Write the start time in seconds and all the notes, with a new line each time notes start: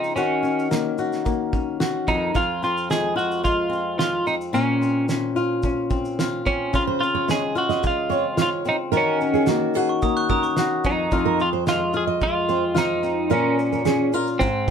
Already playing: C#3 F3 G#3 C4 D#4 F4
0.04 shaker
0.16 D#3 C#4 F#4, shaker
0.43 C#4, shaker
0.59 shaker
0.71 A#3, snare, shaker
0.98 F#4, shaker
1.12 snare, shaker
1.25 A#3, kick, shaker
1.53 C#4, kick, shaker
1.80 F#4, snare, shaker
2.08 F2 D#4, kick, shaker
2.35 F2 F4, kick, shaker
2.63 C4 F4, shaker
2.77 shaker
2.90 G#3 G#4, snare, shaker
3.16 F4 F#4, shaker
3.31 shaker
3.44 G#3 F4, kick, shaker
3.70 C4, shaker
3.99 F4, snare, shaker
4.26 C4 D#4, shaker
4.41 shaker
4.53 A#2 C#4 F4, shaker
4.81 C4, shaker
5.09 C#4, snare, shaker
5.36 F4, shaker
5.63 C#4, kick, shaker
5.90 C4, kick, shaker
6.05 shaker
6.19 F4, snare, shaker
6.46 C4 C#4, kick, shaker
6.73 C#3 F4, kick, shaker
6.87 C5
7.00 C4 F4, shaker
7.15 C#5
7.28 G#3 G#4 C#5, snare, shaker
7.55 F4 F#4, shaker
7.69 D#5, snare, shaker
7.83 G#3 F4, kick, shaker
8.09 C4 C#5, shaker
8.37 F4 C#5, snare, shaker
8.42 F4
8.65 C4 D#4, shaker
8.92 D#3 F#4 A#4, shaker
8.97 C#4
9.21 C#4, shaker
9.34 G#4, shaker
9.46 A#3 F#4, snare, shaker
9.74 F#4 G#4, shaker
9.89 C#6
10.02 A#3 A#5 D#6, kick, shaker
10.17 C#6 F#6
10.29 C#4 A#4 A#5 D#6, kick, shaker
10.43 C#6, shaker
10.57 F#4, snare, shaker
10.84 F2 D#4, kick, shaker
11.11 F2 F4, kick, shaker
11.25 A#4
11.39 C4 F4, shaker
11.53 C5
11.67 G#3 F4 C5, snare, shaker
11.93 F4 G#4, shaker
12.07 D#5
12.21 G#3 F4, kick, shaker
12.49 C4 C5, shaker
12.75 D#4 F4 C5, snare, shaker
13.03 C4, shaker
13.30 A#2 C#4 F4 A#4, shaker
13.59 shaker
13.72 A#4, shaker
13.85 C#4 G#4, snare, shaker
14.13 F4 A#4, shaker
14.27 shaker
14.39 G#2 C4, kick, shaker